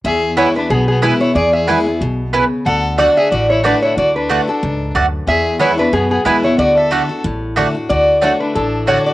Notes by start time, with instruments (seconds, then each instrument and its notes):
0.04 upright bass E2, steel-string acoustic guitar E2, fiddle G#4, resonator guitar played with a steel bar E5
0.37 steel-string acoustic guitar E3 G#3 B3 E4, mandolin B3 E4 B4 G#5, fiddle E4, resonator guitar played with a steel bar C#5
0.55 steel-string acoustic guitar B3 E4, fiddle D4, resonator guitar played with a steel bar B4
0.70 upright bass B1, steel-string acoustic guitar B2, fiddle B3, resonator guitar played with a steel bar G#4
0.88 fiddle B3, resonator guitar played with a steel bar G#4
1.02 steel-string acoustic guitar E3 G#3 B3 E4, mandolin B3 E4 B4 G#5, fiddle E4, resonator guitar played with a steel bar B4
1.20 steel-string acoustic guitar B3 E4, fiddle E4, resonator guitar played with a steel bar C#5
1.35 upright bass E2, steel-string acoustic guitar E2, fiddle G#4, resonator guitar played with a steel bar D5
1.53 fiddle G#4, resonator guitar played with a steel bar E5
1.67 steel-string acoustic guitar E3 G#3 B3 E4, mandolin B3 E4 B4 G#5
1.86 steel-string acoustic guitar B3 E4
2.01 upright bass B1, steel-string acoustic guitar B2
2.33 steel-string acoustic guitar C#3, mandolin B3 E4 B4 G#5
2.66 upright bass D2, steel-string acoustic guitar D3, fiddle A4, resonator guitar played with a steel bar F#5
2.98 steel-string acoustic guitar D3 A3 D4 F#4, mandolin A3 F#4 D5 F#5, fiddle F#4, resonator guitar played with a steel bar D5
3.17 fiddle G#4, resonator guitar played with a steel bar E5
3.31 upright bass A1, steel-string acoustic guitar A2, fiddle F#4, resonator guitar played with a steel bar D5
3.50 fiddle E4, resonator guitar played with a steel bar C#5
3.64 steel-string acoustic guitar D3 A3 D4 F#4, mandolin A3 F#4 D5 F#5, fiddle D4, resonator guitar played with a steel bar B4
3.82 fiddle E4, resonator guitar played with a steel bar C#5
3.97 upright bass D2, steel-string acoustic guitar D3, fiddle F#4, resonator guitar played with a steel bar D5
4.15 fiddle D4, resonator guitar played with a steel bar B4
4.29 steel-string acoustic guitar D3 A3 D4 F#4, mandolin A3 F#4 D5 F#5
4.47 fiddle D4, steel-string acoustic guitar D4 F#4, resonator guitar played with a steel bar A4
4.63 upright bass C#2, steel-string acoustic guitar G#2
4.95 upright bass D2, steel-string acoustic guitar F#2, mandolin A3 F#4 D5 F#5
5.27 upright bass E2, steel-string acoustic guitar E2, fiddle G#4, resonator guitar played with a steel bar E5
5.59 steel-string acoustic guitar E3 G#3 B3 E4, mandolin B3 E4 B4 G#5, fiddle E4, resonator guitar played with a steel bar C#5
5.78 steel-string acoustic guitar B3 E4, fiddle D4, resonator guitar played with a steel bar B4
5.92 upright bass F#2, steel-string acoustic guitar B2, fiddle B3, resonator guitar played with a steel bar G#4
6.11 fiddle B3, resonator guitar played with a steel bar G#4
6.25 upright bass E2, steel-string acoustic guitar E3 G#3 B3 E4, mandolin B3 E4 B4 G#5, fiddle E4, resonator guitar played with a steel bar B4
6.43 steel-string acoustic guitar B3 E4, fiddle E4, resonator guitar played with a steel bar C#5
6.58 upright bass D2, steel-string acoustic guitar D3, fiddle F#4, resonator guitar played with a steel bar D5
6.77 fiddle A4, resonator guitar played with a steel bar E5
6.91 steel-string acoustic guitar D3 A3 D4 F#4, mandolin A3 F#4 D5 F#5
7.09 steel-string acoustic guitar D4 F#4
7.24 upright bass A1, steel-string acoustic guitar A2
7.56 steel-string acoustic guitar D3 A3 D4 F#4, mandolin A3 F#4 D5 F#5
7.75 steel-string acoustic guitar D4 F#4
7.89 upright bass D2, steel-string acoustic guitar D3, fiddle F#4, resonator guitar played with a steel bar D5
8.22 steel-string acoustic guitar D3 A3 D4 F#4, mandolin A3 F#4 D5 F#5, fiddle F#4, resonator guitar played with a steel bar C#5
8.40 fiddle D4, resonator guitar played with a steel bar B4
8.55 upright bass A1, steel-string acoustic guitar A2, fiddle D4, resonator guitar played with a steel bar A4
8.87 steel-string acoustic guitar D3 A3 D4 F#4, mandolin A3 F#4 D5 F#5, fiddle F#4, resonator guitar played with a steel bar C#5
9.06 fiddle F#4, resonator guitar played with a steel bar D5